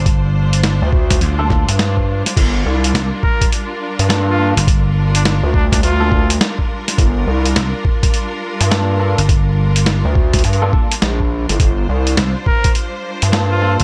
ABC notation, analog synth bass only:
X:1
M:4/4
L:1/16
Q:"Swing 16ths" 1/4=104
K:Gm
V:1 name="Analog synth bass" clef=bass
z4 z D,,3 z3 G,,4 z | G,,,2 C,,2 z6 z G,,4 z | z4 z D,,3 D,,4 z4 | G,,,2 C,,2 z6 z G,,4 z |
z4 z D,,3 G,,2 z2 B,,,3 G,,, | G,,,2 C,,2 z6 z G,,4 z |]